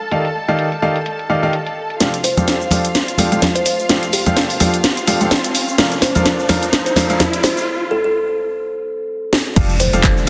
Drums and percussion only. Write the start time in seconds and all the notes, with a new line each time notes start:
0.11 closed hi-hat
0.25 closed hi-hat
0.48 closed hi-hat
0.59 closed hi-hat
0.72 closed hi-hat
0.96 closed hi-hat
1.06 closed hi-hat
1.19 closed hi-hat
1.43 closed hi-hat
1.53 closed hi-hat
1.67 closed hi-hat
1.90 closed hi-hat
2.00 snare, closed hi-hat, tambourine, cabasa
2.14 closed hi-hat, cabasa
2.24 open hi-hat, tambourine, cabasa
2.37 closed hi-hat, tambourine, high conga, cabasa
2.48 snare, closed hi-hat, tambourine, cabasa
2.61 cabasa
2.71 open hi-hat, tambourine, high conga, cabasa
2.85 closed hi-hat, tambourine, cabasa
2.94 snare, closed hi-hat, tambourine, cabasa
3.08 closed hi-hat, cabasa
3.18 open hi-hat, tambourine, high conga, cabasa
3.32 closed hi-hat, tambourine, cabasa
3.42 snare, closed hi-hat, tambourine, high conga, cabasa
3.56 closed hi-hat, cabasa
3.66 open hi-hat, tambourine, cabasa
3.79 tambourine, cabasa
3.89 snare, closed hi-hat, tambourine, cabasa
4.03 closed hi-hat, cabasa
4.12 open hi-hat, tambourine, cabasa
4.25 closed hi-hat, tambourine, high conga, cabasa
4.36 snare, closed hi-hat, tambourine, cabasa
4.50 open hi-hat, cabasa
4.60 open hi-hat, tambourine, high conga, cabasa
4.74 closed hi-hat, tambourine, cabasa
4.84 snare, closed hi-hat, tambourine, cabasa
4.97 closed hi-hat, cabasa
5.07 open hi-hat, tambourine, cabasa
5.21 closed hi-hat, tambourine, cabasa
5.31 snare, closed hi-hat, cabasa
5.44 closed hi-hat, cabasa
5.55 open hi-hat, tambourine, cabasa
5.68 tambourine, cabasa
5.78 snare, closed hi-hat, tambourine, cabasa
5.92 closed hi-hat, cabasa
6.02 snare, open hi-hat, tambourine, cabasa
6.15 closed hi-hat, tambourine, high conga, cabasa
6.25 snare, closed hi-hat, tambourine, cabasa
6.39 cabasa
6.49 snare, open hi-hat, tambourine, high conga, cabasa
6.62 closed hi-hat, tambourine, cabasa
6.73 snare, closed hi-hat, tambourine, cabasa
6.86 closed hi-hat, cabasa
6.96 snare, open hi-hat, tambourine, high conga, cabasa
7.10 closed hi-hat, tambourine, cabasa
7.20 snare, closed hi-hat, tambourine, high conga, cabasa
7.33 closed hi-hat, cabasa
7.43 snare, open hi-hat, tambourine, cabasa
7.57 tambourine, cabasa
9.33 snare
9.56 kick, closed hi-hat, crash, cabasa
9.70 closed hi-hat, cabasa
9.80 open hi-hat, cabasa
9.93 closed hi-hat, cabasa
10.04 kick, clap, closed hi-hat, cabasa
10.17 cabasa